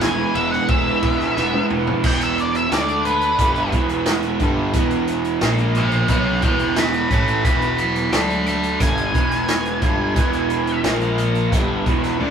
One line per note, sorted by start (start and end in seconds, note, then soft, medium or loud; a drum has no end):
0.00 0.22 E1 medium
0.00 0.33 E2 medium
0.00 0.33 B2 loud
0.00 0.33 E3 medium
0.00 0.69 E3 medium
0.00 0.34 G#3 medium
0.00 0.35 G#3 medium
0.00 0.34 B3 medium
0.00 1.75 B3 medium
0.00 1.01 E4 loud
0.00 1.84 E4 medium
0.00 0.34 G#4 medium
0.00 2.01 G#4 medium
0.00 1.95 B4 medium
0.00 0.33 G#5 loud
0.00 snare loud
0.00 ride medium
0.35 0.56 E1 medium
0.35 2.03 E2 medium
0.35 2.02 B2 medium
0.35 2.02 E3 medium
0.35 2.02 G#3 medium
0.35 2.02 B3 medium
0.35 2.01 G#4 medium
0.35 0.52 E5 medium
0.35 ride medium
0.52 0.69 F#5 medium
0.52 snare soft
0.68 0.90 E1 medium
0.68 1.70 E3 medium
0.68 1.66 E5 medium
0.68 kick loud
0.68 ride loud
1.02 1.23 E1 medium
1.02 1.34 E3 medium
1.02 1.34 G#3 medium
1.02 2.04 G#3 medium
1.02 1.34 B3 medium
1.02 1.34 E4 medium
1.02 kick medium
1.02 ride medium
1.20 snare soft
1.36 1.57 E1 medium
1.36 2.01 E3 medium
1.36 2.02 G#3 medium
1.36 2.02 B3 medium
1.36 2.04 B3 medium
1.36 2.02 E4 medium
1.36 snare medium
1.53 high tom medium
1.70 1.91 E1 medium
1.70 2.04 E3 medium
1.70 1.97 A3 medium
1.70 mid tom loud
1.76 1.98 B3 medium
1.76 2.00 C4 medium
1.82 2.01 D4 medium
1.82 2.02 E4 medium
1.87 2.04 F4 medium
1.87 2.05 G4 medium
1.87 floor tom medium
1.93 2.06 A4 medium
1.93 2.03 B4 medium
1.99 2.09 C5 medium
1.99 2.11 D5 medium
2.04 2.67 E1 medium
2.04 2.70 E2 medium
2.04 2.71 B2 loud
2.04 2.71 E3 loud
2.04 2.71 B3 medium
2.04 2.71 E4 medium
2.04 2.71 G#4 medium
2.04 2.71 B4 medium
2.04 2.21 G5 medium
2.04 kick loud
2.04 crash loud
2.21 2.40 E5 medium
2.21 closed hi-hat medium
2.38 2.55 D5 medium
2.38 closed hi-hat medium
2.55 2.72 E5 medium
2.55 closed hi-hat soft
2.71 3.34 D2 medium
2.71 3.38 D3 medium
2.71 3.38 A3 medium
2.71 3.38 A3 loud
2.71 3.38 D4 medium
2.71 3.39 D4 loud
2.71 3.39 A4 medium
2.71 3.39 D5 medium
2.71 3.05 D5 medium
2.71 snare loud
2.71 closed hi-hat loud
2.88 closed hi-hat soft
3.05 3.71 B4 medium
3.05 closed hi-hat medium
3.21 closed hi-hat medium
3.38 3.70 G1 loud
3.38 3.71 G2 loud
3.38 3.72 D3 loud
3.38 3.72 G3 loud
3.38 5.40 B3 medium
3.38 5.40 E4 medium
3.38 5.40 B4 medium
3.38 5.40 G#5 medium
3.38 kick loud
3.38 closed hi-hat loud
3.55 closed hi-hat soft
3.72 4.36 E1 loud
3.72 4.39 E2 medium
3.72 4.39 B2 loud
3.72 4.39 E3 loud
3.72 kick loud
3.72 closed hi-hat medium
3.89 closed hi-hat soft
4.06 snare loud
4.06 closed hi-hat loud
4.22 closed hi-hat soft
4.39 4.71 G1 medium
4.39 4.73 G2 medium
4.39 4.73 D3 loud
4.39 4.73 G3 loud
4.39 kick loud
4.39 closed hi-hat medium
4.73 5.38 E1 medium
4.73 5.40 E2 medium
4.73 5.40 B2 loud
4.73 5.41 E3 loud
4.73 kick loud
4.73 closed hi-hat loud
4.91 closed hi-hat medium
5.07 closed hi-hat medium
5.24 closed hi-hat soft
5.41 6.05 A#1 medium
5.41 6.08 A#2 medium
5.41 6.08 F3 loud
5.41 6.08 A#3 medium
5.41 6.08 A#3 loud
5.41 6.08 F4 medium
5.41 6.08 A#4 medium
5.41 snare loud
5.41 closed hi-hat medium
5.58 closed hi-hat soft
5.75 6.09 E5 medium
5.75 6.09 G5 medium
5.75 closed hi-hat medium
5.91 closed hi-hat soft
6.08 6.40 B1 medium
6.08 6.42 B2 loud
6.08 6.42 F#3 loud
6.08 6.42 B3 loud
6.08 8.11 B3 medium
6.08 8.11 E4 medium
6.08 8.11 G#4 medium
6.08 8.11 B4 medium
6.08 6.41 E5 medium
6.08 6.43 G5 medium
6.08 kick loud
6.08 closed hi-hat medium
6.42 7.07 E1 loud
6.42 7.09 E2 medium
6.42 7.09 B2 medium
6.42 7.09 E3 loud
6.42 6.75 E5 medium
6.42 6.77 G5 medium
6.42 kick loud
6.42 closed hi-hat medium
6.59 closed hi-hat soft
6.76 7.10 G#5 medium
6.76 7.11 B5 loud
6.76 snare loud
6.76 closed hi-hat loud
6.93 closed hi-hat soft
7.10 7.42 A1 medium
7.10 7.43 A2 loud
7.10 7.43 E3 loud
7.10 7.43 A3 loud
7.10 7.43 G#5 medium
7.10 7.45 B5 medium
7.10 kick loud
7.10 closed hi-hat medium
7.28 closed hi-hat soft
7.44 8.08 E1 loud
7.44 8.11 E2 medium
7.44 8.11 B2 loud
7.44 8.12 E3 loud
7.44 7.77 G#5 medium
7.44 7.79 B5 medium
7.44 kick loud
7.44 closed hi-hat loud
7.62 closed hi-hat soft
7.78 8.11 B5 medium
7.78 8.13 D6 medium
7.78 closed hi-hat medium
7.96 closed hi-hat medium
8.12 8.76 D2 medium
8.12 8.79 D3 medium
8.12 8.79 A3 loud
8.12 8.80 A3 medium
8.12 8.80 D4 loud
8.12 8.80 D4 medium
8.12 8.80 A4 medium
8.12 8.80 D5 medium
8.12 8.45 B5 medium
8.12 8.46 D6 medium
8.12 snare loud
8.12 closed hi-hat loud
8.30 closed hi-hat medium
8.46 8.79 B5 medium
8.46 8.81 D6 medium
8.46 closed hi-hat medium
8.63 closed hi-hat medium
8.80 9.12 G1 loud
8.80 9.13 G2 loud
8.80 9.14 D3 medium
8.80 9.14 G3 loud
8.80 10.83 B3 medium
8.80 10.83 E4 medium
8.80 10.83 B4 medium
8.80 10.83 G#5 medium
8.80 10.81 G#5 loud
8.80 kick loud
8.80 closed hi-hat loud
8.97 closed hi-hat medium
9.14 9.78 E1 loud
9.14 9.81 E2 medium
9.14 9.81 B2 loud
9.14 9.81 E3 loud
9.14 kick loud
9.14 closed hi-hat medium
9.31 snare soft
9.31 closed hi-hat soft
9.48 snare loud
9.48 closed hi-hat loud
9.65 closed hi-hat medium
9.82 10.14 G1 loud
9.82 10.15 G2 medium
9.82 10.15 D3 loud
9.82 10.16 G3 loud
9.82 kick loud
9.82 closed hi-hat medium
10.16 10.80 E1 loud
10.16 10.83 E2 medium
10.16 10.83 B2 medium
10.16 10.83 E3 loud
10.16 kick loud
10.16 closed hi-hat loud
10.33 closed hi-hat soft
10.50 closed hi-hat medium
10.67 closed hi-hat soft
10.84 11.48 A#1 medium
10.84 11.51 A#2 medium
10.84 11.52 F3 loud
10.84 11.52 A#3 loud
10.84 11.52 A#3 medium
10.84 11.52 F4 medium
10.84 11.52 A#4 medium
10.84 11.52 F5 medium
10.84 snare loud
10.84 closed hi-hat medium
11.01 closed hi-hat soft
11.18 closed hi-hat medium
11.35 closed hi-hat soft
11.51 11.84 G1 loud
11.51 11.85 G2 medium
11.51 11.85 D3 loud
11.51 11.86 G3 loud
11.51 12.20 B3 medium
11.51 12.20 E4 medium
11.51 12.19 B4 medium
11.51 12.19 G#5 medium
11.51 kick loud
11.51 closed hi-hat loud
11.86 12.18 E1 medium
11.86 12.19 E2 medium
11.86 12.20 B2 medium
11.86 12.20 E3 medium
11.86 kick loud
11.86 closed hi-hat medium
12.04 snare soft
12.04 closed hi-hat soft
12.20 12.30 D2 medium
12.20 12.30 D3 loud
12.20 12.30 A3 medium
12.20 12.30 D4 medium
12.20 12.30 D4 loud
12.20 12.30 A4 medium
12.20 12.30 D5 medium
12.20 high tom medium